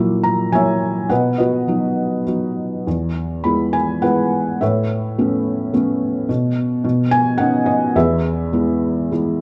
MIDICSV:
0, 0, Header, 1, 2, 480
1, 0, Start_track
1, 0, Key_signature, 4, "major"
1, 0, Tempo, 567644
1, 934, Time_signature, 3, 2, 24, 8
1, 1420, Tempo, 592885
1, 2860, Tempo, 575816
1, 4300, Tempo, 553506
1, 6700, Tempo, 591133
1, 7883, End_track
2, 0, Start_track
2, 0, Title_t, "Felt piano"
2, 0, Program_c, 0, 0
2, 0, Control_c, 0, 64, 127
2, 0, Note_on_c, 0, 46, 47
2, 0, Note_on_c, 0, 54, 38
2, 0, Note_on_c, 0, 58, 32
2, 0, Note_on_c, 0, 64, 43
2, 199, Note_on_c, 0, 82, 69
2, 429, Note_off_c, 0, 82, 0
2, 430, Note_off_c, 0, 54, 0
2, 436, Note_off_c, 0, 64, 0
2, 437, Note_off_c, 0, 58, 0
2, 443, Note_on_c, 0, 54, 33
2, 444, Note_on_c, 0, 80, 69
2, 448, Note_on_c, 0, 64, 35
2, 450, Note_on_c, 0, 58, 30
2, 463, Note_on_c, 0, 73, 47
2, 464, Note_on_c, 0, 76, 53
2, 895, Note_off_c, 0, 80, 0
2, 901, Note_off_c, 0, 46, 0
2, 905, Note_off_c, 0, 73, 0
2, 905, Note_off_c, 0, 76, 0
2, 914, Note_off_c, 0, 54, 0
2, 916, Note_off_c, 0, 64, 0
2, 917, Note_off_c, 0, 58, 0
2, 926, Note_on_c, 0, 78, 62
2, 931, Note_on_c, 0, 47, 45
2, 942, Note_on_c, 0, 71, 46
2, 944, Control_c, 0, 64, 0
2, 945, Note_on_c, 0, 75, 45
2, 1107, Control_c, 0, 64, 127
2, 1157, Note_off_c, 0, 75, 0
2, 1170, Note_on_c, 0, 75, 48
2, 1174, Note_off_c, 0, 71, 0
2, 1179, Note_off_c, 0, 78, 0
2, 1184, Note_on_c, 0, 66, 36
2, 1187, Note_on_c, 0, 71, 38
2, 1414, Note_on_c, 0, 54, 32
2, 1419, Note_on_c, 0, 59, 30
2, 1425, Note_on_c, 0, 63, 35
2, 1861, Note_off_c, 0, 75, 0
2, 1867, Note_off_c, 0, 66, 0
2, 1868, Note_off_c, 0, 71, 0
2, 1878, Note_off_c, 0, 54, 0
2, 1881, Note_off_c, 0, 59, 0
2, 1884, Note_off_c, 0, 63, 0
2, 1896, Note_on_c, 0, 59, 28
2, 1898, Note_on_c, 0, 54, 28
2, 1905, Note_on_c, 0, 63, 33
2, 2344, Note_off_c, 0, 47, 0
2, 2364, Note_off_c, 0, 59, 0
2, 2365, Note_off_c, 0, 54, 0
2, 2368, Note_off_c, 0, 63, 0
2, 2383, Note_on_c, 0, 40, 36
2, 2387, Control_c, 0, 64, 0
2, 2548, Control_c, 0, 64, 127
2, 2843, Note_on_c, 0, 83, 56
2, 2853, Note_on_c, 0, 56, 31
2, 2857, Note_on_c, 0, 59, 28
2, 2860, Note_on_c, 0, 64, 33
2, 3086, Note_on_c, 0, 80, 61
2, 3102, Note_off_c, 0, 83, 0
2, 3323, Note_off_c, 0, 56, 0
2, 3325, Note_off_c, 0, 59, 0
2, 3327, Note_off_c, 0, 64, 0
2, 3328, Note_on_c, 0, 78, 61
2, 3335, Note_on_c, 0, 56, 29
2, 3339, Note_on_c, 0, 59, 29
2, 3340, Note_off_c, 0, 80, 0
2, 3342, Note_on_c, 0, 71, 43
2, 3343, Note_on_c, 0, 64, 32
2, 3788, Note_off_c, 0, 71, 0
2, 3791, Note_off_c, 0, 40, 0
2, 3804, Note_off_c, 0, 56, 0
2, 3806, Note_off_c, 0, 59, 0
2, 3808, Note_off_c, 0, 64, 0
2, 3820, Note_on_c, 0, 76, 50
2, 3822, Note_on_c, 0, 45, 42
2, 3829, Note_off_c, 0, 78, 0
2, 3829, Note_on_c, 0, 71, 38
2, 3832, Control_c, 0, 64, 0
2, 3832, Note_on_c, 0, 73, 38
2, 3990, Control_c, 0, 64, 127
2, 4298, Note_on_c, 0, 57, 38
2, 4300, Note_on_c, 0, 59, 35
2, 4303, Note_on_c, 0, 61, 39
2, 4745, Note_off_c, 0, 76, 0
2, 4750, Note_off_c, 0, 71, 0
2, 4752, Note_off_c, 0, 73, 0
2, 4763, Note_off_c, 0, 57, 0
2, 4764, Note_off_c, 0, 59, 0
2, 4768, Note_off_c, 0, 61, 0
2, 4776, Note_on_c, 0, 57, 32
2, 4777, Note_on_c, 0, 59, 35
2, 4782, Note_on_c, 0, 61, 39
2, 5223, Note_off_c, 0, 45, 0
2, 5241, Note_off_c, 0, 57, 0
2, 5241, Note_off_c, 0, 59, 0
2, 5244, Note_off_c, 0, 61, 0
2, 5257, Note_on_c, 0, 47, 50
2, 5270, Control_c, 0, 64, 0
2, 5431, Control_c, 0, 64, 127
2, 5724, Note_off_c, 0, 47, 0
2, 5737, Note_on_c, 0, 47, 56
2, 5750, Control_c, 0, 64, 0
2, 5886, Control_c, 0, 64, 127
2, 5972, Note_on_c, 0, 80, 82
2, 6200, Note_on_c, 0, 78, 75
2, 6214, Note_on_c, 0, 59, 39
2, 6218, Note_on_c, 0, 61, 39
2, 6219, Note_off_c, 0, 80, 0
2, 6224, Note_on_c, 0, 63, 45
2, 6445, Note_on_c, 0, 75, 60
2, 6452, Note_off_c, 0, 78, 0
2, 6670, Note_off_c, 0, 47, 0
2, 6678, Note_off_c, 0, 75, 0
2, 6684, Note_off_c, 0, 59, 0
2, 6686, Note_off_c, 0, 61, 0
2, 6690, Note_off_c, 0, 63, 0
2, 6701, Note_on_c, 0, 40, 49
2, 6705, Note_on_c, 0, 76, 66
2, 6712, Control_c, 0, 64, 0
2, 6717, Note_on_c, 0, 68, 44
2, 6717, Note_on_c, 0, 71, 45
2, 6870, Control_c, 0, 64, 127
2, 7167, Note_on_c, 0, 56, 34
2, 7169, Note_on_c, 0, 59, 31
2, 7176, Note_on_c, 0, 64, 38
2, 7624, Note_off_c, 0, 76, 0
2, 7630, Note_off_c, 0, 68, 0
2, 7630, Note_off_c, 0, 71, 0
2, 7632, Note_off_c, 0, 56, 0
2, 7638, Note_off_c, 0, 59, 0
2, 7639, Note_off_c, 0, 64, 0
2, 7644, Note_on_c, 0, 56, 27
2, 7652, Note_on_c, 0, 59, 27
2, 7652, Note_on_c, 0, 64, 32
2, 7883, Note_off_c, 0, 40, 0
2, 7883, Note_off_c, 0, 56, 0
2, 7883, Note_off_c, 0, 59, 0
2, 7883, Note_off_c, 0, 64, 0
2, 7883, End_track
0, 0, End_of_file